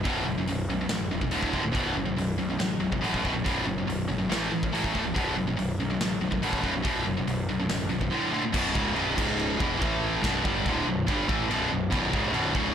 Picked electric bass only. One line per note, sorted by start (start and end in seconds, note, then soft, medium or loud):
0.05 0.24 B0 medium
0.26 0.45 F#1 medium
0.47 0.66 B0 medium
0.68 0.87 B1 medium
0.89 1.08 A1 medium
1.11 1.30 E1 medium
1.32 1.51 D1 medium
1.54 1.73 C#1 medium
1.74 1.93 B0 medium
1.96 2.15 F#1 medium
2.17 2.36 B0 medium
2.38 2.57 B1 medium
2.60 2.79 A1 medium
2.82 3.00 B0 medium
3.04 3.22 A1 medium
3.25 3.43 B0 medium
3.46 3.64 B0 medium
3.66 3.85 F#1 medium
3.87 4.06 B0 medium
4.09 4.28 G1 medium
4.31 4.50 A1 loud
4.52 4.70 A1 medium
4.72 4.91 A1 medium
4.95 5.13 C#1 medium
5.16 5.34 B0 medium
5.35 5.54 F#1 medium
5.57 5.76 B0 medium
5.78 5.97 B1 medium
6.00 6.19 A1 medium
6.19 6.39 B0 medium
6.41 6.60 A1 medium
6.63 6.82 B0 medium
6.84 7.03 B0 medium
7.05 7.24 F#1 medium
7.26 7.45 B0 medium
7.49 7.67 B1 medium
7.70 7.88 A1 medium
7.90 8.09 B0 medium
8.54 8.74 B0 loud
8.75 8.95 C#1 loud
8.96 9.16 B0 medium
9.17 9.57 C#1 medium
9.60 9.80 E1 loud
9.81 10.20 A1 loud
10.23 10.43 B0 medium
10.44 10.64 G1 loud
10.65 10.85 D1 loud
10.87 11.06 B0 medium
11.08 11.27 G1 loud
11.29 11.48 A1 loud
11.50 11.70 B0 medium
11.72 11.91 B0 medium
11.92 12.11 B0 loud
12.13 12.32 C#1 loud
12.34 12.53 B0 loud
12.55 12.74 C#1 loud